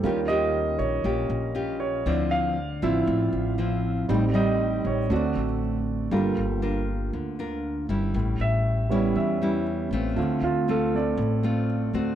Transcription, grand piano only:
0, 0, Header, 1, 2, 480
1, 0, Start_track
1, 0, Tempo, 506329
1, 37, Time_signature, 4, 2, 24, 8
1, 11518, End_track
2, 0, Start_track
2, 0, Title_t, "Grand piano"
2, 0, Program_c, 0, 0
2, 0, Control_c, 0, 64, 127
2, 25, Note_on_c, 0, 55, 41
2, 34, Note_on_c, 0, 61, 35
2, 35, Note_on_c, 0, 65, 47
2, 37, Note_on_c, 0, 70, 56
2, 50, Control_c, 0, 64, 0
2, 216, Control_c, 0, 64, 127
2, 265, Note_on_c, 0, 75, 82
2, 270, Note_off_c, 0, 70, 0
2, 716, Note_off_c, 0, 55, 0
2, 718, Note_off_c, 0, 75, 0
2, 720, Note_off_c, 0, 61, 0
2, 721, Note_off_c, 0, 65, 0
2, 745, Note_on_c, 0, 73, 61
2, 1198, Note_off_c, 0, 73, 0
2, 1705, Note_on_c, 0, 73, 65
2, 1945, Note_off_c, 0, 73, 0
2, 1961, Note_on_c, 0, 74, 62
2, 1974, Control_c, 0, 64, 0
2, 2158, Control_c, 0, 64, 127
2, 2191, Note_on_c, 0, 77, 82
2, 2193, Note_off_c, 0, 74, 0
2, 2642, Note_off_c, 0, 77, 0
2, 2679, Note_on_c, 0, 53, 42
2, 2682, Note_on_c, 0, 60, 38
2, 2683, Note_on_c, 0, 76, 65
2, 2689, Note_on_c, 0, 64, 48
2, 3128, Note_off_c, 0, 76, 0
2, 3364, Note_off_c, 0, 53, 0
2, 3365, Note_off_c, 0, 60, 0
2, 3369, Note_off_c, 0, 64, 0
2, 3873, Note_on_c, 0, 55, 48
2, 3874, Note_on_c, 0, 60, 43
2, 3878, Note_on_c, 0, 63, 47
2, 3894, Control_c, 0, 64, 0
2, 4034, Control_c, 0, 64, 127
2, 4084, Note_on_c, 0, 74, 51
2, 4115, Note_off_c, 0, 74, 0
2, 4123, Note_on_c, 0, 75, 72
2, 4569, Note_off_c, 0, 75, 0
2, 4612, Note_on_c, 0, 73, 60
2, 4799, Note_off_c, 0, 55, 0
2, 4800, Note_off_c, 0, 60, 0
2, 4802, Note_off_c, 0, 63, 0
2, 4836, Note_on_c, 0, 57, 47
2, 4839, Note_on_c, 0, 60, 41
2, 4840, Note_off_c, 0, 73, 0
2, 4850, Note_on_c, 0, 66, 50
2, 4852, Note_on_c, 0, 74, 59
2, 4854, Control_c, 0, 64, 0
2, 5031, Control_c, 0, 64, 127
2, 5157, Note_off_c, 0, 57, 0
2, 5159, Note_off_c, 0, 60, 0
2, 5165, Note_off_c, 0, 66, 0
2, 5293, Note_off_c, 0, 74, 0
2, 5803, Note_on_c, 0, 69, 43
2, 5807, Note_on_c, 0, 58, 42
2, 5809, Note_on_c, 0, 65, 46
2, 5812, Control_c, 0, 64, 0
2, 5990, Control_c, 0, 64, 127
2, 7684, Note_off_c, 0, 69, 0
2, 7686, Note_off_c, 0, 58, 0
2, 7687, Note_off_c, 0, 65, 0
2, 7731, Control_c, 0, 64, 0
2, 7902, Control_c, 0, 64, 127
2, 7974, Note_on_c, 0, 76, 76
2, 8415, Note_off_c, 0, 76, 0
2, 8430, Note_on_c, 0, 55, 43
2, 8442, Note_on_c, 0, 59, 39
2, 8442, Note_on_c, 0, 73, 48
2, 8446, Note_on_c, 0, 61, 45
2, 8674, Note_off_c, 0, 73, 0
2, 8688, Note_on_c, 0, 76, 59
2, 9131, Note_off_c, 0, 76, 0
2, 9597, Note_off_c, 0, 55, 0
2, 9603, Note_off_c, 0, 59, 0
2, 9605, Note_off_c, 0, 61, 0
2, 9634, Note_on_c, 0, 57, 44
2, 9645, Note_on_c, 0, 60, 39
2, 9648, Note_on_c, 0, 65, 49
2, 9652, Control_c, 0, 64, 0
2, 9832, Control_c, 0, 64, 127
2, 9880, Note_off_c, 0, 65, 0
2, 9894, Note_on_c, 0, 65, 71
2, 10121, Note_off_c, 0, 65, 0
2, 10146, Note_on_c, 0, 69, 67
2, 10364, Note_off_c, 0, 57, 0
2, 10366, Note_off_c, 0, 60, 0
2, 10366, Note_off_c, 0, 69, 0
2, 10378, Note_on_c, 0, 57, 39
2, 10380, Note_on_c, 0, 60, 33
2, 10385, Note_on_c, 0, 65, 38
2, 10387, Note_on_c, 0, 74, 65
2, 10586, Note_off_c, 0, 57, 0
2, 10587, Note_off_c, 0, 60, 0
2, 10590, Note_off_c, 0, 65, 0
2, 11056, Note_off_c, 0, 74, 0
2, 11518, End_track
0, 0, End_of_file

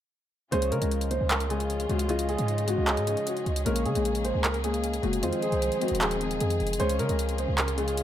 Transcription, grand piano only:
0, 0, Header, 1, 2, 480
1, 0, Start_track
1, 0, Key_signature, -5, "major"
1, 0, Tempo, 392157
1, 639, Time_signature, 4, 2, 24, 8
1, 9830, End_track
2, 0, Start_track
2, 0, Title_t, "Grand piano"
2, 0, Program_c, 0, 0
2, 639, Note_on_c, 0, 72, 117
2, 819, Note_off_c, 0, 72, 0
2, 880, Note_on_c, 0, 70, 95
2, 1331, Note_off_c, 0, 70, 0
2, 1360, Note_on_c, 0, 72, 84
2, 1540, Note_off_c, 0, 72, 0
2, 1600, Note_on_c, 0, 70, 90
2, 1780, Note_off_c, 0, 70, 0
2, 1839, Note_on_c, 0, 68, 77
2, 2291, Note_off_c, 0, 68, 0
2, 2320, Note_on_c, 0, 66, 75
2, 2500, Note_off_c, 0, 66, 0
2, 2560, Note_on_c, 0, 65, 105
2, 2740, Note_off_c, 0, 65, 0
2, 2800, Note_on_c, 0, 68, 95
2, 3251, Note_off_c, 0, 68, 0
2, 3280, Note_on_c, 0, 66, 94
2, 3460, Note_off_c, 0, 66, 0
2, 3520, Note_on_c, 0, 68, 88
2, 3971, Note_off_c, 0, 68, 0
2, 3999, Note_on_c, 0, 66, 87
2, 4180, Note_off_c, 0, 66, 0
2, 4479, Note_on_c, 0, 70, 102
2, 4659, Note_off_c, 0, 70, 0
2, 4719, Note_on_c, 0, 68, 90
2, 5170, Note_off_c, 0, 68, 0
2, 5200, Note_on_c, 0, 72, 81
2, 5380, Note_off_c, 0, 72, 0
2, 5440, Note_on_c, 0, 70, 92
2, 5620, Note_off_c, 0, 70, 0
2, 5679, Note_on_c, 0, 68, 87
2, 6130, Note_off_c, 0, 68, 0
2, 6160, Note_on_c, 0, 66, 77
2, 6340, Note_off_c, 0, 66, 0
2, 6400, Note_on_c, 0, 65, 94
2, 6580, Note_off_c, 0, 65, 0
2, 6641, Note_on_c, 0, 68, 83
2, 7091, Note_off_c, 0, 68, 0
2, 7120, Note_on_c, 0, 66, 77
2, 7300, Note_off_c, 0, 66, 0
2, 7360, Note_on_c, 0, 68, 87
2, 7811, Note_off_c, 0, 68, 0
2, 7841, Note_on_c, 0, 68, 82
2, 8291, Note_off_c, 0, 68, 0
2, 8321, Note_on_c, 0, 72, 116
2, 8500, Note_off_c, 0, 72, 0
2, 8560, Note_on_c, 0, 70, 96
2, 9011, Note_off_c, 0, 70, 0
2, 9040, Note_on_c, 0, 72, 84
2, 9220, Note_off_c, 0, 72, 0
2, 9280, Note_on_c, 0, 70, 90
2, 9460, Note_off_c, 0, 70, 0
2, 9520, Note_on_c, 0, 68, 77
2, 9830, Note_off_c, 0, 68, 0
2, 9830, End_track
0, 0, End_of_file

